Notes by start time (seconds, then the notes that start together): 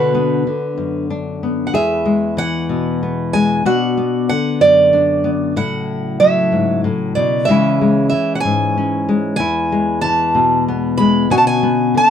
Already playing: B2 D3 B3 D4 F#4 B4
0.15 B3
0.47 D3
0.78 F#2
1.10 D4
1.43 B3
1.67 F#5
1.73 E2 G#3 E4 G#4 B4 E5
2.05 G#3
2.37 E3 F#5
2.69 B2
3.03 B3
3.33 G#3 G#5
3.65 B2 B3 D4 F#4 D5 F#5
3.97 B3
4.29 D3 F#5
4.61 F#2 D5
4.93 D4
5.24 B3
5.56 A2 C#3 F#3 E4 A4 F#5
6.20 F#3 E5
6.52 G#2
6.84 A2
7.15 B2 D5
7.45 C#3 E3 G#3 C#5 E5
7.49 G#3 C#4 E4
7.81 G#3
8.10 E3 E5
8.35 F#5
8.40 G#5
8.44 G#2
8.77 C#4
9.09 G#3
9.36 E2 E4 B4 G#5
9.72 G#3
10.01 E3 A5
10.35 B2
10.68 B3
10.98 G#3 B5
11.29 B2 D3 C#4 F#4 G#5
11.38 A5
11.47 G#5
11.63 B3
11.94 D3 A5